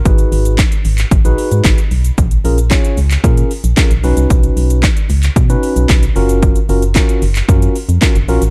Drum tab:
HH |xxoxxxoxxxoxxxox|xxoxxxoxxxoxxxox|xxoxxxoxxxoxxxox|xxoxxxoxxxoxxxox|
SH |xxxxxxxxxxxxxxxx|xxxxxxxxxxxxxxxx|xxxxxxxxxxxxxxxx|xxxxxxxxxxxxxxxx|
CP |----x--x----x---|----x--x----x---|----x--x----x---|----x--x----x---|
SD |----o-------o---|----o-------o---|----o-------o---|----o-------o---|
BD |o---o---o---o---|o---o---o---o---|o---o---o---o---|o---o---o---o---|